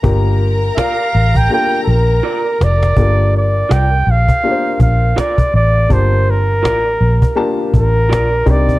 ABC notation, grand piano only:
X:1
M:4/4
L:1/8
Q:"Swing 16ths" 1/4=82
K:Gm
V:1 name="Grand piano"
[B,DFGB]4 [B,DFGA]4 | [B,DFGA]4 [B,DFGBc]4 | [B,DFGa]4 [B,DFGa]3 [CDEGB] |]